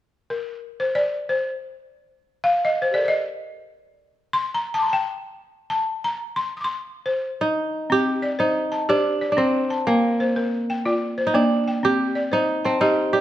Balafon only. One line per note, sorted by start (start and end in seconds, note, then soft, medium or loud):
0.30 0.81 A#4 medium
0.80 0.95 C5 medium
0.95 1.30 D5 medium
1.29 1.76 C5 medium
2.44 2.63 F5 medium
2.65 2.83 D#5 medium
2.82 2.94 C5 medium
2.91 3.05 G4 soft
2.91 3.09 A4 soft
2.91 3.03 D5 medium
2.98 3.12 A#4 soft
2.98 3.16 C5 soft
3.05 3.19 D5 medium
3.05 3.84 D#5 medium
4.33 4.55 C6 medium
4.54 4.73 A#5 medium
4.74 4.88 A5 medium
4.74 4.90 D#6 soft
4.78 4.97 C6 soft
4.78 4.93 D6 soft
4.86 5.04 A5 soft
4.86 5.00 A#5 soft
4.93 5.39 G5 medium
5.70 6.06 A5 medium
6.04 6.38 A#5 medium
6.36 6.63 C6 medium
6.57 6.75 D6 soft
6.57 6.71 D#6 soft
6.64 7.07 C6 medium
7.06 7.69 C5 medium
7.90 8.22 C4 medium
8.22 8.71 D5 medium
8.39 8.88 C5 medium
8.72 9.21 A5 medium
8.89 9.21 G4 medium
8.89 9.37 C5 medium
9.21 9.70 D5 medium
9.37 9.70 C4 medium
9.70 10.03 A5 medium
9.87 10.19 A#3 medium
10.20 10.68 C5 medium
10.36 10.85 A#4 medium
10.70 11.18 G5 medium
10.86 11.17 F4 medium
10.86 11.34 D5 medium
11.18 11.66 C5 medium
11.34 11.66 A#3 medium
11.68 11.99 G5 medium
11.83 12.15 C4 medium
12.15 12.64 D5 medium
12.32 12.80 C5 medium
12.65 13.13 A5 medium
12.81 13.13 G4 medium
12.81 13.21 D#5 medium
13.13 13.21 D5 medium